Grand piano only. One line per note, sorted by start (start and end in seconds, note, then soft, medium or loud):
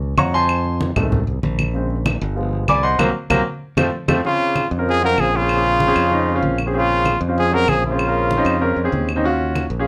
0.18 0.33 C#5 medium
0.18 0.33 F#5 medium
0.18 0.33 A#5 medium
0.18 0.33 C#6 loud
0.34 0.78 C5 medium
0.34 0.78 G#5 medium
0.34 0.78 A5 medium
0.34 0.77 C6 loud
0.96 1.17 D#3 medium
0.96 1.17 G#3 medium
0.96 1.17 A3 medium
1.74 1.94 C#3 medium
1.74 1.95 G#3 medium
1.74 1.95 C4 medium
2.36 2.80 F3 medium
2.36 2.81 G#3 medium
2.36 2.81 B3 medium
2.69 2.83 D5 medium
2.69 2.83 G#5 medium
2.69 2.83 B5 medium
2.69 2.83 D6 loud
2.83 2.98 C5 medium
2.83 2.98 D#5 medium
2.83 2.98 F#5 medium
2.83 2.98 C6 loud
2.99 3.09 F#3 loud
2.99 3.09 A#3 loud
2.99 3.09 C4 loud
3.30 3.40 F#3 loud
3.30 3.40 A#3 loud
3.30 3.40 C4 loud
3.77 3.87 F3 loud
3.77 3.87 A3 medium
3.77 3.87 C4 loud
4.08 4.18 F3 loud
4.08 4.18 A3 loud
4.08 4.18 C4 loud
4.24 4.62 C4 medium
4.24 4.62 C#4 medium
4.24 4.63 G#4 medium
4.78 4.94 C4 medium
4.78 4.95 C#4 medium
4.78 4.95 A#4 medium
5.01 5.29 C4 medium
5.01 5.29 C#4 medium
5.01 5.30 F4 medium
5.41 5.52 C4 medium
5.41 5.52 C#4 medium
5.41 5.52 G#4 medium
5.56 5.78 C4 medium
5.56 5.79 C#4 medium
5.56 5.79 G#4 medium
5.87 6.04 C4 medium
5.87 6.04 C#4 medium
5.87 6.05 G#4 loud
6.11 6.28 C4 medium
6.11 6.28 C#4 medium
6.11 6.28 D#4 medium
6.35 6.57 C4 medium
6.35 6.57 C#4 medium
6.35 6.57 F4 loud
6.66 6.72 C4 medium
6.66 6.72 C#4 medium
6.66 6.72 G#4 medium
6.73 7.12 C4 medium
6.73 7.12 C#4 medium
6.73 7.13 G#4 medium
7.28 7.45 C4 medium
7.28 7.45 C#4 medium
7.28 7.45 F4 medium
7.51 7.79 C4 medium
7.51 7.80 C#4 medium
7.51 7.80 G#4 medium
7.90 8.02 C4 medium
7.90 8.02 C#4 medium
7.90 8.02 G#4 medium
8.06 8.29 C4 medium
8.06 8.29 C#4 medium
8.06 8.29 A#4 medium
8.37 8.54 C4 medium
8.37 8.54 C#4 medium
8.37 8.55 D#4 loud
8.60 8.78 C4 medium
8.60 8.78 C#4 medium
8.60 8.78 A#4 loud
8.84 9.07 C4 medium
8.84 9.07 C#4 medium
8.84 9.07 G#4 loud
9.16 9.22 C4 medium
9.16 9.22 C#4 medium
9.16 9.22 D#4 medium
9.24 9.63 C#4 medium
9.24 9.63 F4 medium
9.24 9.63 F#4 loud
9.79 9.87 C#4 medium
9.79 9.87 F4 medium
9.79 9.87 G#4 medium